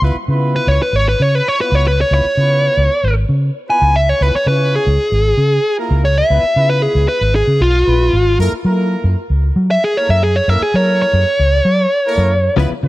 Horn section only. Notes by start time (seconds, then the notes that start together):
0.02 B3 E4 F4 B4
0.29 B3 E4 F4 B4
1.59 B3 E4 F4 B4
2.10 B3 E4 F4 B4
2.36 B3 E4 F4 B4
3.68 B3 E4 F4 B4
4.20 B3 E4 F4 B4
4.47 C#4 E4 F4 C#5
5.77 A#3 E4 F4 A#4
6.29 B3 E4 F4 B4
6.56 B3 E4 F4 B4
7.85 B3 E4 F4 B4
8.38 A#3 E4 A4 A#4
8.64 A#3 E4 A4 A#4
9.96 A#3 E4 A4 A#4
10.48 A#3 E4 A4 A#4
10.74 A#3 E4 A4 A#4
12.05 A#3 E4 A4 A#4
12.57 B3 E4 F4 B4
12.83 B3 E4 F4 B4